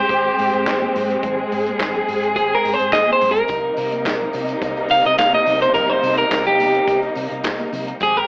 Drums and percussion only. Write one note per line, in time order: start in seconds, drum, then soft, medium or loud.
0.09 kick loud
0.09 closed hi-hat medium
0.09 muted conga soft
0.25 muted conga soft
0.39 open hi-hat medium
0.53 closed hi-hat soft
0.66 kick medium
0.66 snare loud
0.66 clap medium
0.66 closed hi-hat medium
0.66 high conga medium
0.82 muted conga soft
0.82 high conga medium
0.95 open hi-hat medium
0.95 low conga medium
1.10 closed hi-hat medium
1.23 kick loud
1.23 closed hi-hat medium
1.23 muted conga soft
1.23 low conga medium
1.39 muted conga soft
1.52 open hi-hat medium
1.66 closed hi-hat soft
1.66 high conga medium
1.79 kick loud
1.79 snare loud
1.79 clap medium
1.79 closed hi-hat medium
1.79 muted conga soft
1.95 high conga medium
1.95 low conga medium
2.08 open hi-hat medium
2.23 closed hi-hat soft
2.36 kick loud
2.36 closed hi-hat medium
2.36 muted conga soft
2.52 muted conga soft
2.65 open hi-hat medium
2.79 closed hi-hat soft
2.92 kick loud
2.92 snare loud
2.92 clap medium
2.92 closed hi-hat medium
2.92 high conga medium
3.08 high conga medium
3.21 open hi-hat medium
3.21 low conga medium
3.36 closed hi-hat medium
3.48 kick loud
3.48 closed hi-hat medium
3.48 tambourine medium
3.48 low conga medium
3.64 muted conga soft
3.77 open hi-hat medium
3.77 tambourine medium
3.92 closed hi-hat soft
3.92 tambourine soft
3.92 high conga medium
4.05 kick loud
4.05 snare loud
4.05 clap medium
4.05 closed hi-hat medium
4.05 tambourine medium
4.21 low conga medium
4.33 open hi-hat medium
4.33 tambourine soft
4.48 closed hi-hat soft
4.48 tambourine soft
4.62 kick loud
4.62 closed hi-hat medium
4.62 tambourine medium
4.62 muted conga soft
4.77 tambourine soft
4.88 open hi-hat medium
4.88 tambourine medium
5.05 closed hi-hat soft
5.18 kick loud
5.18 snare loud
5.18 clap medium
5.18 closed hi-hat medium
5.18 tambourine medium
5.18 high conga medium
5.33 muted conga soft
5.33 high conga medium
5.46 open hi-hat medium
5.46 tambourine medium
5.46 low conga medium
5.62 closed hi-hat medium
5.74 kick loud
5.74 closed hi-hat medium
5.74 tambourine medium
5.74 muted conga soft
5.74 low conga medium
6.03 open hi-hat medium
6.03 tambourine medium
6.18 closed hi-hat soft
6.18 high conga medium
6.31 kick medium
6.31 snare loud
6.31 clap medium
6.31 closed hi-hat medium
6.31 tambourine loud
6.46 muted conga soft
6.46 low conga medium
6.59 open hi-hat medium
6.59 tambourine medium
6.75 closed hi-hat soft
6.88 kick loud
6.88 closed hi-hat medium
6.88 tambourine medium
7.02 tambourine soft
7.02 muted conga soft
7.15 open hi-hat medium
7.15 tambourine medium
7.31 closed hi-hat soft
7.44 kick medium
7.44 snare loud
7.44 clap medium
7.44 closed hi-hat medium
7.44 tambourine medium
7.44 high conga medium
7.59 tambourine soft
7.59 muted conga soft
7.59 high conga medium
7.73 open hi-hat medium
7.73 tambourine medium
7.73 low conga medium
7.88 closed hi-hat medium
8.00 kick loud
8.00 closed hi-hat medium
8.00 tambourine medium
8.00 muted conga soft
8.00 low conga medium
8.16 muted conga soft